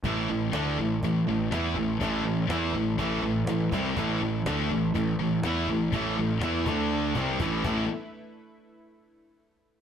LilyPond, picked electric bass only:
\new Staff \with { instrumentName = "Picked electric bass" } { \clef bass \time 4/4 \key a \minor \tempo 4 = 122 a,,8 a,,8 d,8 a,,8 a,,8 a,,8 e,8 a,,8 | a,,8 a,,8 e,8 a,,8 a,,8 a,,8 a,,8 c,8 | a,,8 a,,8 d,8 a,,8 a,,8 a,,8 e,8 a,,8 | a,,8 a,,8 e,8 d,4 c,8 a,,8 a,,8 |
r1 | }